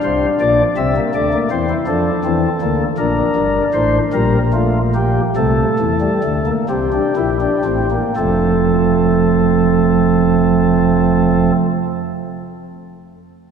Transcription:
0.00 0.26 C2 medium
0.00 0.26 C3 medium
0.00 0.61 D4 medium
0.00 0.26 C5 medium
0.41 0.63 A#1 medium
0.41 0.63 A#2 medium
0.41 0.63 D5 medium
0.77 1.00 C2 medium
0.77 1.00 C3 medium
0.77 0.92 C4 medium
0.77 1.00 E5 medium
0.96 1.11 A#3 medium
1.15 1.37 D2 medium
1.15 1.37 D3 medium
1.15 1.30 A3 medium
1.15 1.37 D5 medium
1.33 1.48 A#3 medium
1.51 1.74 E2 medium
1.51 1.74 E3 medium
1.51 1.66 C4 medium
1.51 1.74 C5 medium
1.70 1.85 E4 medium
1.87 2.10 F2 medium
1.87 2.10 F3 medium
1.87 2.10 D4 medium
1.87 2.83 A4 medium
2.25 2.47 E2 medium
2.25 2.47 E3 medium
2.25 2.47 C4 medium
2.61 2.84 D2 medium
2.61 2.85 D3 medium
2.61 2.84 A#3 medium
2.98 3.21 A#1 medium
2.98 3.21 A#2 medium
2.98 3.98 D4 medium
2.98 3.64 A#4 medium
3.36 3.60 G1 medium
3.36 3.60 G2 medium
3.74 3.99 A1 medium
3.74 3.99 A2 medium
3.74 3.99 C5 loud
4.13 5.19 A#1 medium
4.13 5.19 A#2 medium
4.13 4.38 G3 medium
4.13 4.38 A#4 loud
4.53 4.79 A3 medium
4.53 4.79 F4 loud
4.95 5.21 A#3 medium
4.95 5.21 G4 loud
5.36 5.63 C2 loud
5.36 5.63 C3 medium
5.36 5.92 A3 medium
5.36 6.51 A4 loud
5.79 6.07 E2 loud
5.79 6.07 E3 medium
6.01 6.21 G3 medium
6.24 6.52 D2 medium
6.24 6.52 D3 loud
6.24 6.43 A3 medium
6.46 6.66 A#3 medium
6.69 6.99 C2 medium
6.69 6.98 C3 medium
6.69 6.89 C4 medium
6.69 7.96 G4 medium
6.93 7.13 D4 medium
7.16 7.47 A#1 medium
7.16 7.47 A#2 medium
7.16 7.37 E4 medium
7.41 7.62 D4 medium
7.65 7.97 A1 medium
7.65 7.96 A2 medium
7.65 7.87 C4 medium
7.91 8.13 A#3 medium
8.16 11.51 F1 medium
8.16 11.52 F2 medium
8.16 11.54 F3 medium
8.16 11.54 A3 medium
8.16 11.52 C4 medium
8.16 11.51 A4 medium

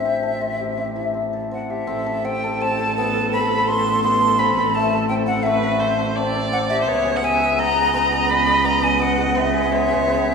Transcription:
0.00 1.84 A1 medium
0.00 2.34 A3 medium
0.00 2.34 D4 medium
0.00 0.95 E4 medium
0.00 0.65 F#4 medium
0.00 0.23 A4 medium
0.00 1.23 E5 medium
0.05 0.41 C4 medium
0.23 1.33 A4 medium
0.41 0.77 C4 medium
0.59 1.69 G4 medium
0.78 1.14 C4 medium
0.96 4.44 E4 medium
1.14 1.51 C4 medium
1.33 2.06 A4 medium
1.51 1.87 C4 medium
1.51 1.72 F#5 medium
1.70 4.84 G4 medium
1.70 2.27 E5 medium
1.87 6.88 A1 medium
1.87 2.24 C4 medium
1.87 5.47 A4 medium
2.06 2.43 A4 medium
2.25 2.60 C4 medium
2.25 2.63 G5 medium
2.44 2.79 A4 medium
2.60 3.04 C4 medium
2.60 2.97 A5 medium
2.79 3.15 A4 medium
2.97 3.39 B3 medium
2.97 3.30 A5 loud
3.16 3.50 A4 medium
3.32 3.74 C4 medium
3.32 3.69 B5 loud
3.51 4.21 A4 medium
3.68 4.04 B3 medium
3.68 4.03 C6 loud
3.86 4.45 B4 medium
4.04 4.45 B3 medium
4.04 4.41 C6 loud
4.22 4.57 A4 medium
4.39 5.10 C4 medium
4.39 4.76 B5 loud
4.57 4.92 A4 medium
4.75 5.46 A3 medium
4.75 5.08 A5 medium
4.93 5.27 A4 medium
5.09 5.81 C4 medium
5.09 5.15 G5 medium
5.27 5.64 A4 medium
5.27 5.45 F#5 medium
5.43 7.11 A3 medium
5.43 5.81 B4 loud
5.43 6.16 E5 medium
5.64 5.98 A4 medium
5.80 6.17 C4 medium
5.80 6.18 C5 medium
5.98 6.34 A4 medium
6.16 6.51 C4 medium
6.16 6.80 D5 loud
6.35 7.11 A4 medium
6.52 6.93 C4 medium
6.52 6.58 F#5 medium
6.70 7.11 G4 medium
6.70 7.03 E5 medium
6.81 6.90 C5 medium
6.86 10.35 C#2 loud
6.86 7.22 B3 medium
6.86 7.18 C#5 loud
7.05 7.40 G#4 medium
7.16 7.25 F#5 medium
7.23 7.58 B3 medium
7.23 7.60 E5 loud
7.23 7.61 G#5 medium
7.40 7.75 G#4 medium
7.58 7.93 B3 medium
7.58 9.73 D#5 loud
7.58 7.93 A#5 loud
7.75 8.11 G#4 medium
7.94 8.28 B3 medium
7.94 8.32 A#5 loud
8.11 8.46 G#4 medium
8.29 8.64 B3 medium
8.29 8.67 B5 loud
8.47 9.17 G#4 medium
8.64 8.99 B3 medium
8.64 8.85 A#5 loud
8.82 10.35 B4 medium
8.82 9.03 G#5 loud
8.99 9.35 B3 medium
8.99 9.39 F#5 medium
9.17 9.53 G#4 medium
9.35 10.07 B3 loud
9.35 10.35 E5 loud
9.54 9.89 G#4 medium
9.72 10.35 G#3 medium
9.72 10.35 C#5 loud
9.89 10.24 G#4 medium
10.07 10.35 B3 medium
10.25 10.35 G#4 medium

